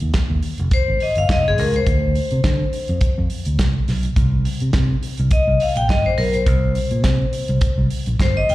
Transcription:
0.00 D#2, closed hi-hat
0.14 kick, snare, closed hi-hat
0.30 D#2
0.43 open hi-hat
0.58 F1, closed hi-hat
0.71 C5, kick, closed hi-hat
0.88 G#1
1.00 D#5, open hi-hat
1.15 G1 F5, closed hi-hat
1.29 F1 D#5, kick, snare, closed hi-hat
1.48 G#4
1.58 C#2 A#4, open hi-hat
1.74 C5, closed hi-hat
1.86 D2, kick, closed hi-hat
2.15 open hi-hat
2.31 C3, closed hi-hat
2.44 D3, kick, snare, closed hi-hat
2.73 open hi-hat
2.88 F2, closed hi-hat
3.01 kick, closed hi-hat
3.18 F2
3.30 open hi-hat
3.45 D2, closed hi-hat
3.59 C2, kick, snare, closed hi-hat
3.88 B1, snare, open hi-hat
4.03 closed hi-hat
4.16 C2, kick, closed hi-hat
4.45 open hi-hat
4.60 C3, closed hi-hat
4.73 C3, kick, snare, closed hi-hat
5.03 open hi-hat
5.17 C2, closed hi-hat
5.31 D#5, kick, closed hi-hat
5.48 C2
5.60 F5, open hi-hat
5.76 A#1 G5, closed hi-hat
5.89 G1 D#5, kick, snare, closed hi-hat
6.06 C5
6.18 B1 A#4, open hi-hat
6.33 C5, closed hi-hat
6.46 C2, kick, closed hi-hat
6.75 open hi-hat
6.91 A#2, closed hi-hat
7.04 C3, kick, snare, closed hi-hat
7.33 open hi-hat
7.48 C2, closed hi-hat
7.61 kick, closed hi-hat
7.78 C2
7.90 open hi-hat
8.06 A#1, closed hi-hat
8.19 G1 C5, kick, snare, closed hi-hat
8.37 D#5
8.49 E1 G5, open hi-hat

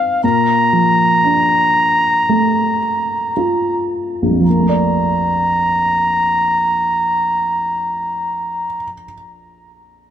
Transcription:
Already playing: G#2 C4 D#4 F5
0.24 A#2 A#5
0.73 F3
1.24 D4
2.29 A3
3.37 F4
4.22 A#1
4.31 F2
4.40 F3
4.47 A#3 A#5
4.60 A3
4.69 D5

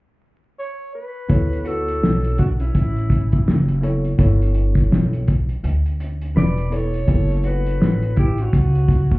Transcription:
0.59 C#5
0.95 B4
1.29 D2 B3 E4 A4 C#5, kick, closed hi-hat
1.53 closed hi-hat
1.65 F#4 A4, closed hi-hat
1.88 closed hi-hat
2.03 B1, snare
2.24 closed hi-hat
2.38 D4 F#4, kick, closed hi-hat
2.60 C#4 E4, closed hi-hat
2.75 A1, kick, closed hi-hat
2.96 closed hi-hat
3.10 kick, closed hi-hat
3.32 kick, closed hi-hat
3.47 F#1, snare
3.68 closed hi-hat
3.82 B3 E4 A4 C#5, closed hi-hat
4.04 closed hi-hat
4.18 G1 B3 E4 A4 C#5, kick, closed hi-hat
4.42 closed hi-hat
4.54 closed hi-hat
4.75 kick, closed hi-hat
4.91 B1, snare
5.13 closed hi-hat
5.28 kick, closed hi-hat
5.49 muted upright bass stroke, closed hi-hat
5.63 D2, closed hi-hat
5.86 closed hi-hat
6.00 closed hi-hat
6.21 closed hi-hat
6.36 E1 B4 D5, snare
6.57 closed hi-hat
6.70 B3 E4 A4 C#5, closed hi-hat
6.94 closed hi-hat
7.07 F#1 B3 E4 G4 C#5, kick, closed hi-hat
7.15 A4
7.31 closed hi-hat
7.44 F#4 B4, closed hi-hat
7.66 closed hi-hat
7.80 A1, snare
8.02 closed hi-hat
8.16 E4 G4, kick, closed hi-hat
8.38 C#4 F#4, closed hi-hat
8.53 C#2, kick, closed hi-hat
8.75 closed hi-hat
8.88 kick, closed hi-hat
9.11 kick, closed hi-hat

